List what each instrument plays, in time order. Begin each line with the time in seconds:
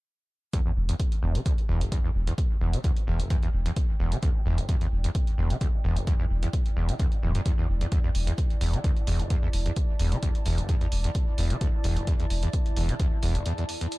0.53 acid bass E2, ambient pad E4, kick, closed hi-hat
0.61 ambient pad D5
0.66 acid bass E2
0.73 sub bass E1, ambient pad G5
0.89 acid bass E2, closed hi-hat
1.00 kick, closed hi-hat
1.12 closed hi-hat
1.23 sub bass E1, acid bass E2
1.35 acid bass D3, closed hi-hat
1.46 acid bass D2, kick, closed hi-hat
1.58 closed hi-hat
1.69 sub bass E1, acid bass E2
1.81 acid bass E1, closed hi-hat
1.92 acid bass E2, kick, closed hi-hat
2.04 acid bass E2
2.15 sub bass E1
2.27 acid bass E2, closed hi-hat
2.38 kick, closed hi-hat
2.61 sub bass E1, acid bass E2
2.73 acid bass D3, closed hi-hat
2.84 acid bass D2, kick, closed hi-hat
2.97 closed hi-hat
3.07 sub bass E1, acid bass E2
3.20 acid bass E1, closed hi-hat
3.30 acid bass E2, kick, closed hi-hat
3.43 acid bass E2, closed hi-hat
3.53 sub bass E1
3.66 acid bass E2, closed hi-hat
3.76 kick, closed hi-hat
4.00 sub bass E1, acid bass E2
4.12 acid bass D3, closed hi-hat
4.23 acid bass D2, kick, closed hi-hat
4.46 sub bass E1, acid bass E2
4.58 acid bass E1, closed hi-hat
4.69 acid bass E2, kick, closed hi-hat
4.81 acid bass E2, closed hi-hat
4.92 sub bass E1
5.04 acid bass E2, closed hi-hat
5.15 kick, closed hi-hat
5.27 closed hi-hat
5.38 sub bass E1, acid bass E2
5.50 acid bass D3, closed hi-hat
5.61 acid bass D2, kick, closed hi-hat
5.84 sub bass E1, acid bass E2
5.97 acid bass E1, closed hi-hat
6.07 acid bass E2, kick, closed hi-hat
6.20 acid bass E2
6.30 sub bass E1
6.43 acid bass E2, closed hi-hat
6.53 kick, closed hi-hat
6.66 closed hi-hat
6.76 sub bass E1, acid bass E2
6.89 acid bass D3, closed hi-hat
7.00 acid bass D2, kick, closed hi-hat
7.12 closed hi-hat
7.23 sub bass D1, acid bass E2
7.35 acid bass F#2, closed hi-hat
7.46 acid bass E2, kick, closed hi-hat
7.58 acid bass E2
7.69 sub bass E1
7.81 acid bass E2, closed hi-hat
7.92 acid bass E2, kick, closed hi-hat
8.04 acid bass E2
8.11 ambient pad A5, open hi-hat
8.15 sub bass E1
8.27 acid bass E2, closed hi-hat
8.38 kick, closed hi-hat
8.50 closed hi-hat
8.61 sub bass E1, acid bass E2, open hi-hat
8.73 acid bass D3, closed hi-hat
8.84 acid bass D2, kick, closed hi-hat
8.97 closed hi-hat
9.07 sub bass E1, acid bass E2, open hi-hat
9.20 acid bass E1, closed hi-hat
9.30 acid bass E2, kick, closed hi-hat
9.43 acid bass E2
9.53 sub bass E1, open hi-hat
9.66 acid bass E2, closed hi-hat
9.76 kick, closed hi-hat
9.99 sub bass E1, acid bass E2, open hi-hat
10.12 acid bass D3, closed hi-hat
10.23 acid bass D2, kick, closed hi-hat
10.35 closed hi-hat
10.46 sub bass E1, acid bass E2, open hi-hat
10.58 acid bass E1, closed hi-hat
10.69 acid bass E2, kick, closed hi-hat
10.81 acid bass E2, closed hi-hat
10.92 sub bass E1, open hi-hat
11.04 acid bass E2, closed hi-hat
11.15 kick, closed hi-hat
11.38 sub bass E1, acid bass E2, open hi-hat
11.50 acid bass D3, closed hi-hat
11.61 acid bass D2, kick, closed hi-hat
11.84 sub bass E1, acid bass E2, open hi-hat
11.97 acid bass E1, closed hi-hat
12.07 acid bass E2, kick, closed hi-hat
12.20 acid bass E2, closed hi-hat
12.30 sub bass E1, open hi-hat
12.43 acid bass E2, closed hi-hat
12.53 kick, closed hi-hat
12.66 closed hi-hat
12.77 sub bass E1, acid bass E2, open hi-hat
12.89 acid bass D3, closed hi-hat
13.00 acid bass D2, kick, closed hi-hat
13.23 sub bass E1, acid bass E2, open hi-hat
13.35 acid bass E1, closed hi-hat
13.46 acid bass E2, closed hi-hat
13.58 acid bass E2, closed hi-hat
13.69 open hi-hat
13.81 acid bass E2, closed hi-hat
13.92 closed hi-hat